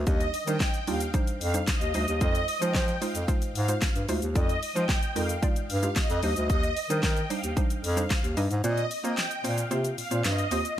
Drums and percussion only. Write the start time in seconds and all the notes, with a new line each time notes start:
0.07 kick, closed hi-hat, shaker
0.21 closed hi-hat, shaker
0.34 open hi-hat, shaker
0.47 closed hi-hat, shaker
0.60 kick, snare, clap, closed hi-hat, shaker
0.74 closed hi-hat, shaker
0.87 open hi-hat, shaker
1.00 closed hi-hat, shaker
1.14 kick, closed hi-hat, shaker
1.27 closed hi-hat, shaker
1.41 open hi-hat, shaker
1.54 closed hi-hat, shaker
1.67 kick, snare, clap, closed hi-hat, shaker
1.81 closed hi-hat, shaker
1.94 open hi-hat, shaker
2.08 closed hi-hat, shaker
2.21 kick, closed hi-hat, shaker
2.35 closed hi-hat, shaker
2.48 open hi-hat, shaker
2.62 closed hi-hat, shaker
2.75 kick, snare, clap, closed hi-hat, shaker
2.88 closed hi-hat, shaker
3.02 open hi-hat, shaker
3.15 closed hi-hat, shaker
3.28 kick, closed hi-hat, shaker
3.42 closed hi-hat, shaker
3.55 open hi-hat, shaker
3.68 closed hi-hat, shaker
3.82 kick, snare, clap, closed hi-hat, shaker
3.96 closed hi-hat, shaker
4.09 open hi-hat, shaker
4.22 closed hi-hat, shaker
4.36 kick, closed hi-hat, shaker
4.49 closed hi-hat, shaker
4.63 open hi-hat, shaker
4.76 closed hi-hat, shaker
4.89 kick, snare, clap, closed hi-hat, shaker
5.02 closed hi-hat, shaker
5.16 open hi-hat, shaker
5.29 closed hi-hat, shaker
5.43 kick, closed hi-hat, shaker
5.56 closed hi-hat, shaker
5.70 open hi-hat, shaker
5.83 closed hi-hat, shaker
5.96 kick, snare, clap, closed hi-hat, shaker
6.10 closed hi-hat, shaker
6.23 open hi-hat, shaker
6.36 closed hi-hat, shaker
6.50 kick, closed hi-hat, shaker
6.63 closed hi-hat, shaker
6.77 open hi-hat, shaker
6.90 closed hi-hat, shaker
7.03 kick, snare, clap, closed hi-hat, shaker
7.17 closed hi-hat, shaker
7.30 open hi-hat, shaker
7.44 closed hi-hat, shaker
7.57 kick, closed hi-hat, shaker
7.70 closed hi-hat, shaker
7.84 open hi-hat, shaker
7.97 closed hi-hat, shaker
8.10 kick, snare, clap, closed hi-hat, shaker
8.24 closed hi-hat, shaker
8.37 open hi-hat, shaker
8.51 closed hi-hat, shaker
8.64 closed hi-hat, shaker
8.78 closed hi-hat, shaker
8.91 open hi-hat, shaker
9.05 closed hi-hat, shaker
9.17 snare, clap, closed hi-hat, shaker
9.31 closed hi-hat, shaker
9.45 open hi-hat, shaker
9.58 closed hi-hat, shaker
9.71 closed hi-hat, shaker
9.85 closed hi-hat, shaker
9.98 open hi-hat, shaker
10.11 closed hi-hat, shaker
10.24 snare, clap, closed hi-hat, shaker
10.38 closed hi-hat, shaker
10.51 open hi-hat, shaker
10.65 closed hi-hat, shaker